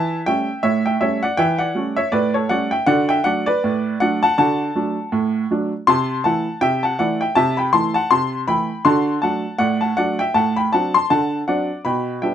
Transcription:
0.00 0.21 E3 loud
0.00 0.24 E5 medium
0.00 0.19 A5 loud
0.26 0.47 G3 medium
0.26 0.48 A3 medium
0.26 0.48 C#4 medium
0.26 0.61 E5 medium
0.26 0.62 G5 loud
0.63 0.95 A2 medium
0.63 0.84 C#5 medium
0.63 0.85 E5 loud
0.86 0.99 E5 medium
0.86 1.02 G5 loud
1.01 1.22 G3 medium
1.01 1.22 A3 medium
1.01 1.22 C#4 medium
1.01 1.21 C#5 medium
1.01 1.22 E5 loud
1.23 1.38 D5 medium
1.23 1.39 F#5 loud
1.37 1.70 E3 loud
1.37 1.59 E5 medium
1.37 1.59 G5 loud
1.58 1.95 D5 medium
1.58 1.95 F#5 loud
1.75 1.96 G3 medium
1.75 1.96 A3 medium
1.75 1.96 C#4 medium
1.96 2.12 C#5 medium
1.96 2.13 E5 loud
2.12 2.44 A2 loud
2.12 2.33 B4 medium
2.12 2.34 D5 loud
2.34 2.50 A4 medium
2.34 2.51 C#5 loud
2.49 2.71 G3 medium
2.49 2.71 A3 medium
2.49 2.71 C#4 medium
2.49 2.70 D5 medium
2.49 2.71 F#5 loud
2.71 2.87 E5 medium
2.71 2.88 G5 loud
2.86 3.19 D3 loud
2.86 3.10 F#4 medium
2.86 3.08 D5 medium
2.86 3.08 F#5 loud
3.09 3.25 E5 medium
3.09 3.25 G5 loud
3.24 3.45 F#3 medium
3.24 3.46 A3 medium
3.24 3.46 D4 medium
3.24 3.45 D5 medium
3.24 3.46 F#5 loud
3.46 3.97 B4 medium
3.46 3.97 D5 loud
3.64 3.95 A2 loud
4.00 4.21 F#3 medium
4.00 4.21 A3 medium
4.00 4.22 D4 medium
4.00 4.21 D5 medium
4.00 4.21 F#5 loud
4.23 4.38 F#5 medium
4.23 4.37 A5 loud
4.38 4.70 D3 loud
4.38 4.60 F#4 medium
4.38 5.46 F#5 medium
4.38 5.46 A5 loud
4.75 4.96 F#3 medium
4.75 4.96 A3 medium
4.75 4.96 D4 medium
5.12 5.44 A2 loud
5.51 5.71 F#3 medium
5.51 5.71 A3 medium
5.51 5.72 D4 medium
5.87 6.19 C3 loud
5.87 6.23 A5 medium
5.87 6.23 C6 loud
6.24 6.46 E3 medium
6.24 6.46 A3 medium
6.24 6.46 E4 medium
6.24 6.60 F#5 medium
6.24 6.60 A5 loud
6.61 6.93 C3 medium
6.61 6.82 E5 medium
6.61 6.83 G5 loud
6.83 6.98 F#5 medium
6.83 6.99 A5 loud
6.99 7.20 E3 medium
6.99 7.20 A3 medium
6.99 7.21 E4 medium
6.99 7.19 D5 medium
6.99 7.20 F#5 loud
7.21 7.35 E5 medium
7.21 7.37 G5 loud
7.35 7.68 C3 loud
7.35 7.56 E5 loud
7.35 7.57 A5 loud
7.57 7.73 G5 medium
7.57 7.74 B5 loud
7.73 7.94 E3 medium
7.73 7.94 A3 medium
7.73 7.95 E4 medium
7.73 7.93 A5 medium
7.73 7.94 C6 loud
7.94 8.10 F#5 medium
7.94 8.10 A5 loud
8.11 8.43 C3 medium
8.11 8.46 A5 medium
8.11 8.41 C6 loud
8.48 8.68 E3 medium
8.48 8.69 A3 medium
8.48 8.69 E4 medium
8.48 8.83 G5 medium
8.48 8.84 B5 loud
8.85 9.17 D3 loud
8.85 9.08 F#4 medium
8.85 9.20 A5 medium
8.85 9.15 C6 loud
9.22 9.44 F#3 medium
9.22 9.44 A3 medium
9.22 9.44 D4 medium
9.22 9.57 F#5 medium
9.22 9.58 A5 medium
9.58 9.92 A2 loud
9.58 9.80 D5 medium
9.58 9.80 F#5 loud
9.81 9.95 F#5 medium
9.81 9.98 A5 medium
9.97 10.18 F#3 medium
9.97 10.18 A3 medium
9.97 10.19 D4 medium
9.97 10.18 D5 medium
9.97 10.19 F#5 loud
10.19 10.35 E5 medium
10.19 10.35 G5 loud
10.34 10.67 A2 medium
10.34 10.55 F#5 medium
10.34 10.56 A5 loud
10.56 10.72 G5 medium
10.56 10.73 B5 loud
10.73 10.94 F#3 medium
10.73 10.94 C4 medium
10.73 10.94 D4 medium
10.73 10.93 F#5 medium
10.73 10.94 A5 loud
10.94 11.09 A5 medium
10.94 11.11 C6 loud
11.10 11.42 D3 medium
11.10 11.46 F#5 medium
11.10 11.40 A5 loud
11.48 11.68 F#3 medium
11.48 11.69 C4 medium
11.48 11.69 D4 medium
11.48 11.83 D5 medium
11.48 11.78 F#5 medium
11.85 12.17 B2 medium
11.85 12.21 G5 medium
11.85 12.15 B5 loud
12.22 12.35 G3 medium
12.22 12.35 B3 medium
12.22 12.35 D4 medium
12.22 12.35 E5 medium
12.22 12.35 G5 medium

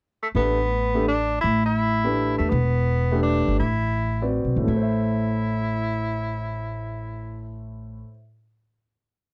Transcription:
0.23 0.28 A3 medium
0.35 1.39 A1 medium
0.35 0.56 A3 medium
0.35 1.04 B3 loud
0.35 0.57 D4 medium
0.35 0.57 G4 medium
0.35 0.57 B4 medium
0.95 1.06 A3 medium
0.95 1.06 D4 medium
0.95 1.06 G4 medium
0.95 1.07 A4 medium
1.08 1.40 D4 medium
1.41 2.35 A1 medium
1.41 1.64 E4 loud
1.66 2.34 E4 loud
2.04 2.50 A3 medium
2.04 2.50 D4 medium
2.04 2.50 G4 medium
2.04 2.50 B4 medium
2.38 2.51 E2 medium
2.38 2.50 A3 medium
2.49 3.43 E1 medium
2.49 3.22 B3 medium
3.12 3.58 A3 medium
3.12 3.58 D4 medium
3.12 3.58 G4 medium
3.12 3.58 B4 medium
3.23 3.57 D4 medium
3.48 3.59 G1 medium
3.60 4.40 A1 medium
3.60 4.28 E4 medium
4.22 4.67 C4 medium
4.22 4.67 F#4 medium
4.22 4.67 B4 medium
4.22 4.67 D5 medium
4.45 4.56 B1 medium
4.56 4.67 G#1 medium
4.56 7.96 A2 medium
4.64 8.02 A1 medium
4.64 8.02 A3 medium
4.69 7.62 E4 medium
4.69 8.08 E4 medium
4.76 8.15 C5 medium
4.83 8.21 E5 medium

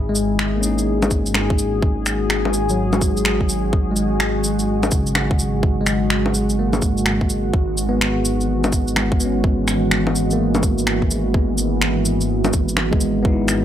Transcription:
0.00 7.52 G#1 medium
0.00 13.65 G#3 medium
0.00 13.65 F#4 medium
0.00 7.50 G#4 medium
0.09 0.70 G#3 medium
0.15 shaker medium
0.39 finger snap loud
0.56 1.16 A#3 soft
0.61 1.19 C#4 medium
0.61 shaker medium
0.66 1.21 D#4 soft
0.78 shaker soft
1.02 low bongo medium
1.02 shaker soft
1.11 kick medium
1.11 shaker medium
1.26 shaker soft
1.34 finger snap loud
1.34 low bongo soft
1.50 kick loud
1.58 shaker medium
1.82 kick loud
2.06 finger snap medium
2.06 shaker medium
2.30 finger snap loud
2.45 low bongo soft
2.54 shaker medium
2.69 3.28 F#3 medium
2.69 shaker soft
2.93 low bongo medium
2.93 shaker soft
3.01 kick loud
3.01 shaker medium
3.17 shaker soft
3.25 finger snap loud
3.41 kick medium
3.49 shaker medium
3.73 kick loud
3.91 4.53 G#3 medium
3.96 shaker medium
4.20 finger snap loud
4.44 shaker medium
4.59 shaker soft
4.83 low bongo medium
4.83 shaker soft
4.91 5.55 C#3 medium
4.91 kick loud
4.91 shaker medium
5.07 shaker soft
5.15 finger snap loud
5.15 low bongo soft
5.31 kick loud
5.39 shaker medium
5.63 kick loud
5.81 6.42 G#3 medium
5.86 finger snap medium
5.86 shaker medium
6.10 finger snap loud
6.26 low bongo soft
6.34 shaker medium
6.50 shaker soft
6.59 7.21 A#3 medium
6.73 low bongo medium
6.73 shaker soft
6.82 kick medium
6.82 shaker medium
6.97 shaker soft
7.06 finger snap loud
7.21 kick medium
7.30 shaker soft
7.54 13.65 G#1 medium
7.54 13.65 E3 medium
7.54 kick loud
7.78 shaker medium
7.89 8.48 B3 medium
8.01 finger snap loud
8.25 shaker medium
8.41 shaker soft
8.64 low bongo medium
8.64 shaker soft
8.72 kick medium
8.72 shaker medium
8.88 shaker soft
8.96 finger snap loud
8.96 low bongo soft
9.12 9.78 G#3 soft
9.12 kick loud
9.20 9.80 B3 medium
9.20 shaker soft
9.25 9.83 C#4 medium
9.44 kick loud
9.68 finger snap medium
9.68 shaker medium
9.91 finger snap loud
10.07 low bongo soft
10.15 shaker soft
10.31 10.94 A#3 medium
10.31 shaker soft
10.55 low bongo medium
10.55 shaker soft
10.63 kick medium
10.63 shaker soft
10.78 shaker soft
10.87 finger snap loud
11.02 kick medium
11.11 shaker soft
11.34 11.97 B3 medium
11.34 kick loud
11.58 shaker medium
11.82 finger snap medium
12.05 shaker medium
12.21 shaker soft
12.45 low bongo medium
12.45 shaker soft
12.53 kick medium
12.53 shaker medium
12.69 shaker soft
12.77 finger snap loud
12.77 low bongo soft
12.91 13.50 G#3 medium
12.91 kick loud
12.96 13.21 B3 medium
13.01 shaker soft
13.23 13.65 B3 medium
13.23 kick loud
13.27 13.65 D#4 medium
13.32 13.65 E4 medium
13.48 finger snap medium
13.48 shaker medium

